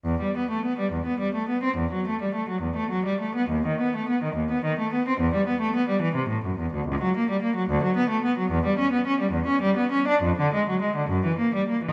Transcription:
0.05 0.20 E2 medium
0.22 0.36 G3 soft
0.37 0.51 B3 soft
0.50 0.64 A3 soft
0.66 0.79 B3 soft
0.79 0.93 G3 soft
0.92 1.06 E2 soft
1.06 1.20 B3 soft
1.20 1.34 G3 soft
1.35 1.49 A3 soft
1.49 1.63 B3 soft
1.63 1.77 C4 soft
1.77 1.91 E2 medium
1.92 2.06 F#3 soft
2.08 2.20 A3 soft
2.21 2.34 G3 soft
2.35 2.48 A3 soft
2.49 2.62 F#3 soft
2.62 2.76 E2 soft
2.76 2.90 A3 soft
2.91 3.05 F#3 soft
3.06 3.20 G3 soft
3.21 3.35 A3 soft
3.35 3.50 B3 soft
3.50 3.65 D#2 medium
3.67 3.80 D#3 soft
3.81 3.94 B3 soft
3.96 4.09 A3 soft
4.09 4.22 B3 soft
4.23 4.36 D#3 soft
4.35 4.49 D#2 soft
4.51 4.64 B3 soft
4.65 4.78 D#3 soft
4.79 4.92 A3 soft
4.93 5.06 B3 soft
5.08 5.20 C4 soft
5.20 5.33 E2 medium
5.34 5.47 G3 medium
5.47 5.60 B3 medium
5.61 5.74 A3 soft
5.76 5.88 B3 medium
5.89 6.01 G3 medium
6.02 6.14 E3 medium
6.16 6.28 C3 soft
6.29 6.42 A2 soft
6.45 6.58 F#2 soft
6.59 6.72 E2 soft
6.74 6.87 D2 soft
6.88 7.01 C#2 medium
7.02 7.15 F#3 medium
7.17 7.29 A#3 medium
7.30 7.43 G3 soft
7.42 7.56 A#3 medium
7.56 7.69 F#3 soft
7.70 7.83 D2 medium
7.83 7.96 F#3 medium
7.96 8.09 B3 medium
8.10 8.23 A3 medium
8.25 8.37 B3 medium
8.38 8.51 F#3 medium
8.51 8.64 E2 medium
8.66 8.78 G3 medium
8.79 8.92 C#4 medium
8.92 9.05 B3 soft
9.07 9.20 C#4 medium
9.21 9.33 G3 medium
9.32 9.46 E2 medium
9.47 9.61 C#4 medium
9.62 9.76 G3 medium
9.77 9.91 B3 soft
9.92 10.06 C#4 soft
10.08 10.22 D4 medium
10.23 10.36 F2 medium
10.39 10.52 D3 soft
10.54 10.66 G#3 medium
10.69 10.81 F#3 soft
10.82 10.95 G#3 soft
10.96 11.09 D3 soft
11.10 11.23 F#2 medium
11.25 11.39 E3 soft
11.39 11.53 A#3 soft
11.55 11.68 G3 soft
11.69 11.82 A#3 soft
11.84 11.93 E3 soft

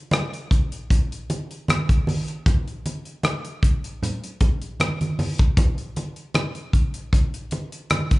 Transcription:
0.11 cross-stick loud
0.11 closed hi-hat medium
0.11 high conga medium
0.34 closed hi-hat soft
0.51 kick medium
0.51 closed hi-hat medium
0.72 closed hi-hat soft
0.90 kick medium
0.90 closed hi-hat medium
0.90 muted conga soft
1.12 closed hi-hat medium
1.30 closed hi-hat medium
1.30 muted conga soft
1.51 closed hi-hat soft
1.68 cross-stick loud
1.68 closed hi-hat medium
1.68 high conga medium
1.89 kick medium
1.89 closed hi-hat medium
2.07 open hi-hat medium
2.07 high conga medium
2.28 closed hi-hat soft
2.46 kick loud
2.46 closed hi-hat medium
2.46 muted conga medium
2.68 closed hi-hat soft
2.86 closed hi-hat medium
2.86 muted conga soft
3.05 closed hi-hat soft
3.23 cross-stick medium
3.23 closed hi-hat medium
3.23 high conga medium
3.45 closed hi-hat soft
3.63 kick medium
3.63 closed hi-hat medium
3.84 closed hi-hat medium
4.03 closed hi-hat medium
4.03 low conga medium
4.24 closed hi-hat soft
4.41 kick medium
4.41 closed hi-hat medium
4.41 muted conga soft
4.62 closed hi-hat soft
4.80 cross-stick loud
4.80 closed hi-hat medium
4.80 high conga medium
5.01 closed hi-hat medium
5.01 high conga soft
5.19 open hi-hat medium
5.19 high conga medium
5.38 kick medium
5.38 closed hi-hat soft
5.57 kick loud
5.57 closed hi-hat medium
5.57 muted conga medium
5.78 closed hi-hat soft
5.96 closed hi-hat medium
5.96 muted conga soft
6.16 closed hi-hat soft
6.34 cross-stick medium
6.34 closed hi-hat medium
6.34 high conga medium
6.55 closed hi-hat soft
6.73 kick medium
6.73 closed hi-hat medium
6.94 closed hi-hat medium
7.13 kick medium
7.13 closed hi-hat medium
7.34 closed hi-hat soft
7.51 closed hi-hat medium
7.51 muted conga soft
7.72 closed hi-hat soft
7.90 cross-stick loud
7.90 closed hi-hat medium
7.90 high conga medium
8.11 kick medium
8.11 closed hi-hat medium

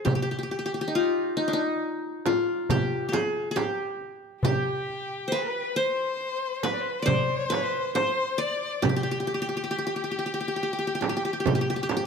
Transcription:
0.00 0.11 G#4 medium
0.00 0.39 C5 medium
0.05 0.15 G4 medium
0.05 frame drum medium
0.05 darbuka dum medium
0.15 0.22 G4 medium
0.22 0.31 G4 medium
0.31 0.38 G4 soft
0.39 0.43 G4 soft
0.43 0.51 G4 soft
0.51 0.58 G4 medium
0.51 darbuka ka soft
0.59 0.65 G4 medium
0.66 0.74 G4 medium
0.74 0.81 G4 soft
0.81 2.07 G4 medium
0.88 1.36 D#4 medium
0.95 2.26 F4 medium
0.95 darbuka ka soft
1.37 1.53 D#4 medium
1.48 1.59 D4 medium
1.53 2.97 D#4 medium
2.26 3.61 F4 medium
2.26 darbuka tek medium
2.26 frame drum medium
2.69 3.08 G4 medium
2.69 darbuka dum medium
2.69 frame drum medium
3.09 3.19 G4 medium
3.09 darbuka tek medium
3.13 3.51 G#4 medium
3.13 frame drum medium
3.51 3.62 G#4 medium
3.56 4.44 G4 medium
3.56 darbuka tek medium
3.56 frame drum medium
4.01 darbuka ka soft
4.43 5.33 G4 medium
4.43 5.70 G4 medium
4.43 darbuka dum medium
4.43 frame drum medium
4.88 darbuka ka soft
5.28 5.38 C5 medium
5.32 5.78 B4 medium
5.32 5.82 B4 medium
5.32 darbuka ka soft
5.76 6.69 C5 medium
5.76 6.75 C5 medium
6.63 7.12 B4 medium
6.63 darbuka tek medium
6.63 frame drum medium
6.73 6.82 D5 medium
6.80 6.92 C5 medium
6.90 7.01 B4 medium
6.99 7.07 C5 medium
6.99 8.01 D5 medium
7.06 7.56 C5 medium
7.06 7.92 C5 medium
7.06 frame drum medium
7.06 darbuka dum medium
7.50 8.01 B4 medium
7.50 darbuka tek medium
7.50 frame drum medium
7.95 9.01 C5 medium
7.95 8.42 C5 medium
7.95 darbuka tek medium
7.95 frame drum medium
8.38 9.37 D5 medium
8.38 8.87 D5 medium
8.38 darbuka ka soft
8.82 8.89 G4 medium
8.82 12.06 G4 medium
8.82 frame drum medium
8.82 darbuka dum medium
8.89 8.96 G4 medium
8.96 9.03 G4 medium
9.03 9.11 G4 medium
9.11 9.20 G4 medium
9.20 9.27 G4 medium
9.27 9.34 G4 medium
9.27 darbuka ka soft
9.34 9.41 G4 medium
9.42 9.48 G4 medium
9.49 9.56 G4 medium
9.57 9.63 G4 medium
9.64 9.70 G4 medium
9.71 9.78 G4 medium
9.71 darbuka ka soft
9.78 9.86 G4 medium
9.87 9.96 G4 medium
9.96 10.03 G4 soft
10.04 10.11 G4 medium
10.11 10.18 G4 soft
10.16 10.26 G4 medium
10.16 darbuka ka soft
10.26 10.33 G4 soft
10.34 10.40 G4 medium
10.41 10.48 G4 soft
10.48 10.56 G4 medium
10.56 10.62 G4 soft
10.60 10.73 G4 medium
10.60 darbuka ka soft
10.73 10.78 G4 soft
10.79 10.87 G4 medium
10.87 10.95 G4 medium
10.95 11.00 G4 medium
11.01 11.09 G4 soft
11.01 darbuka tek medium
11.01 frame drum medium
11.09 11.16 G4 medium
11.17 11.24 G4 medium
11.25 11.33 G4 medium
11.33 11.40 G4 medium
11.40 11.46 G4 medium
11.46 11.55 G4 medium
11.46 frame drum medium
11.46 darbuka dum medium
11.55 11.61 G4 medium
11.61 11.69 G4 medium
11.70 11.76 G4 medium
11.76 11.82 G4 medium
11.83 11.89 G4 medium
11.89 11.96 G4 medium
11.89 darbuka tek medium
11.89 frame drum medium
11.97 12.05 G4 medium

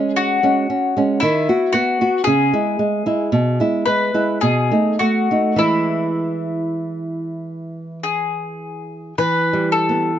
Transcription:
0.00 0.39 G#3 soft
0.00 0.39 C#4 soft
0.00 0.11 G#4 medium
0.16 1.17 F#4 medium
0.43 0.66 G#3 soft
0.43 0.66 C#4 soft
0.70 0.96 C#4 soft
0.97 1.19 G#3 soft
0.97 1.20 C#4 soft
1.20 1.47 D#3 soft
1.20 1.69 E4 soft
1.49 1.71 B3 soft
1.49 1.72 F#4 soft
1.73 2.00 B3 soft
1.73 2.22 F#4 soft
2.01 2.24 B3 soft
2.01 2.24 F#4 soft
2.24 2.52 C#3 soft
2.24 3.81 G#4 medium
2.53 2.76 G#3 soft
2.53 2.77 E4 soft
2.79 3.05 G#3 soft
3.06 3.29 G#3 soft
3.06 3.30 E4 soft
3.32 3.58 B2 soft
3.60 3.84 G#3 soft
3.60 3.84 E4 soft
3.86 4.13 G#3 soft
3.86 4.37 B4 soft
4.14 4.39 G#3 soft
4.14 4.39 E4 soft
4.41 4.70 B2 soft
4.41 4.95 G#4 soft
4.71 4.97 A3 soft
4.71 4.97 D#4 soft
4.99 5.30 A3 soft
4.99 5.56 F#4 soft
5.31 5.57 A3 soft
5.31 5.58 D#4 soft
5.56 9.13 E3 soft
5.56 9.13 G#3 soft
5.56 7.99 E4 soft
5.56 9.15 E4 soft
8.03 9.14 G#4 soft
9.18 10.19 E3 soft
9.18 9.68 B4 medium
9.53 10.11 G3 soft
9.72 10.19 A4 soft
9.89 10.19 B3 soft

